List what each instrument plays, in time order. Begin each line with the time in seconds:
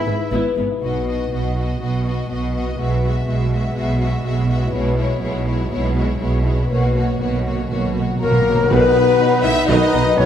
Already playing: harp G#2 B3 B4 E5 B5, trumpet section E4, violin section E4 E5
0.07 double bass section G#1, cello section G#2, viola section E3 G#3, harp E4
0.22 harp B4
0.33 double bass section G#1, cello section G#2, viola section B3 E4, harp E4
0.47 harp E5
0.58 double bass section G#1, cello section G#2, viola section G#3 B3, harp B5
0.66 harp B2
0.70 harp D#4 E5
0.75 harp F#4
0.79 double bass section B1, cello section B2, viola section B3, violin section F#4, harp B4
0.84 violin section D#5
1.07 viola section B3, violin section F#4 D#5
1.31 double bass section B1, cello section B2, viola section B3, violin section F#4 D#5
1.56 viola section B3, violin section F#4 D#5
1.81 double bass section B1, cello section B2, viola section B3, violin section F#4 D#5
2.05 viola section B3, violin section F#4 D#5
2.30 double bass section B1, cello section B2, viola section B3, violin section F#4 D#5
2.54 viola section B3, violin section F#4 D#5
2.62 harp B2
2.66 harp E4
2.71 harp F#4
2.75 cello section B2, violin section F#4, harp G#4
2.80 double bass section B1, viola section G#3, violin section E5
3.02 viola section G#3, violin section F#4 E5
3.27 double bass section B1, cello section B2, viola section G#3, violin section F#4 E5
3.52 viola section G#3, violin section F#4 E5
3.75 double bass section B1, cello section B2, viola section G#3, violin section F#4 E5
4.00 viola section G#3, violin section F#4 E5
4.24 double bass section B1, cello section B2, viola section G#3, violin section F#4 E5
4.49 viola section G#3, violin section F#4 E5
4.56 harp B2
4.60 harp C#4
4.65 harp E4
4.69 cello section B2, violin section E4, harp G#4
4.73 double bass section B1, viola section G#3, violin section C#5
4.97 viola section G#3, violin section E4 C#5
5.22 double bass section B1, cello section B2, viola section G#3, violin section E4 C#5
5.46 viola section G#3, violin section E4 C#5
5.71 double bass section B1, cello section B2, viola section G#3, violin section E4 C#5
5.95 viola section G#3, violin section E4 C#5
6.20 double bass section B1, cello section B2, viola section G#3, violin section E4 C#5
6.45 viola section G#3, violin section E4 C#5
6.54 harp B2
6.58 harp C#4
6.62 harp F#4
6.67 double bass section B1, cello section B2, violin section F#4 C#5, harp A#4
6.72 timpani B2, viola section A#3
6.79 timpani B2
6.87 timpani B2
6.94 timpani B2, viola section A#3, violin section F#4 C#5
7.02 timpani B2
7.17 timpani B2, cello section B2, viola section A#3, violin section F#4 C#5
7.22 double bass section B1, timpani B2
7.33 timpani B2
7.41 timpani B2, violin section F#4
7.46 timpani B2, viola section A#3, violin section C#5
7.56 timpani B2
7.64 timpani B2
7.69 double bass section B1, cello section B2, timpani B2, viola section A#3, violin section F#4 C#5
7.79 timpani B2
7.87 timpani B2
7.94 timpani B2, viola section A#3, violin section F#4
7.98 timpani B2, violin section C#5
8.08 timpani B2
8.17 timpani B2, french horn section A#3, violin section F#4 A#4
8.21 double bass section B1, cello section B2, timpani B2, viola section A#3, flute section A#4, violin section A#4 C#5
8.32 timpani B2
8.40 timpani B2
8.45 timpani B2, viola section A#3, violin section F#4 C#5
8.55 timpani B2
8.62 timpani B2
8.69 double bass section B1, tuba B1, cello section B2, timpani B2, harp B2, viola section D#3 D#4, trombone section D#3 F#3, french horn section B3, violin section B4, flute section B4, trumpet section B4
8.96 harp D#4
9.21 harp F#4
9.43 double bass section B1, tuba B1, cello section B2, viola section B3, harp D#4, french horn section E4, violin section E5, flute section E5
9.67 double bass section B1, tuba B1, cello section B2, viola section D#3, trombone section D#3 F#3, harp F#3, french horn section D#4, trumpet section B4, violin section D#5, flute section D#5
9.94 double bass section B1, tuba B1, cello section B2, viola section B3
10.17 double bass section B1, tuba B1, cello section B2, viola section F#3, french horn section C#4, harp F#4, flute section C#5, violin section C#5